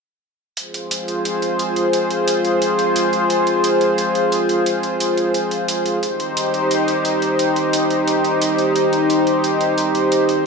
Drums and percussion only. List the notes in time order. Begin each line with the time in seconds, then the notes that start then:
0.57 closed hi-hat
0.74 closed hi-hat
0.91 closed hi-hat
1.08 closed hi-hat
1.25 closed hi-hat
1.42 closed hi-hat
1.59 closed hi-hat
1.76 closed hi-hat
1.93 closed hi-hat
2.11 closed hi-hat
2.28 closed hi-hat
2.45 closed hi-hat
2.62 closed hi-hat
2.79 closed hi-hat
2.96 closed hi-hat
3.13 closed hi-hat
3.30 closed hi-hat
3.47 closed hi-hat
3.64 closed hi-hat
3.81 closed hi-hat
3.98 closed hi-hat
4.15 closed hi-hat
4.32 closed hi-hat
4.49 closed hi-hat
4.66 closed hi-hat
4.83 closed hi-hat
5.00 closed hi-hat
5.17 closed hi-hat
5.34 closed hi-hat
5.51 closed hi-hat
5.68 closed hi-hat
5.86 closed hi-hat
6.03 closed hi-hat
6.20 closed hi-hat
6.37 closed hi-hat
6.54 closed hi-hat
6.71 closed hi-hat
6.88 closed hi-hat
7.05 closed hi-hat
7.22 closed hi-hat
7.39 closed hi-hat
7.56 closed hi-hat
7.73 closed hi-hat
7.90 closed hi-hat
8.07 closed hi-hat
8.24 closed hi-hat
8.42 closed hi-hat
8.58 closed hi-hat
8.76 closed hi-hat
8.93 closed hi-hat
9.10 closed hi-hat
9.27 closed hi-hat
9.44 closed hi-hat
9.61 closed hi-hat
9.78 closed hi-hat
9.95 closed hi-hat
10.12 closed hi-hat
10.29 closed hi-hat